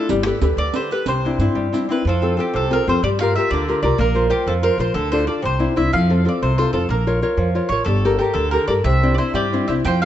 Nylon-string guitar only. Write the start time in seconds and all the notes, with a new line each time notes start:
0.10 G3
0.26 G4 A4 B4
0.42 G4 A4 B4
0.59 D3
0.76 G4 A4 B4
0.92 G4 A4 B4
1.08 C3
1.25 C4 D4 E4
1.40 C4 D4 E4
1.55 G3
1.73 C4 D4 E4
1.89 C4 D4 E4
2.07 F3
2.22 C4 F4 A4
2.37 C4 F4 A4
2.54 C3
2.71 C4 F4 A4
2.87 C4 F4 A4
3.04 G3
3.21 F4 G4 A#4
3.37 F4 G4 A#4
3.53 D3
3.68 F4 G4 A#4
3.84 F4 G4 A#4
3.98 A#3
4.15 F4 A#4 C5
4.30 F4 A#4 C5
4.48 F3
4.63 F4 A#4 C5
4.79 F4 A#4 C5
4.95 D3
5.13 D4 F4 A4
5.27 D4 F4 A4
5.42 C3
5.59 C4 D4 E4
5.76 C4 D4 E4
5.93 F3
6.10 C4 F4 A4
6.25 C4 F4 A4
6.43 C3
6.59 C4 F4 A4
6.74 C4 F4 A4
6.90 A#3
7.07 F4 A#4 C#5
7.22 F4 A#4 C#5
7.38 F3
7.55 F4 A#4 C#5
7.72 F4 A#4 C#5
7.88 G3
8.05 G4 A4 A#4
8.19 G4 A4 A#4
8.34 D3
8.52 G4 A4 A#4
8.69 G4 A4 A#4
8.86 C3
9.03 C4 D4 E4
9.18 C4 D4 E4
9.34 G3
9.53 C4 D4 E4
9.69 C4 D4 E4
9.85 F3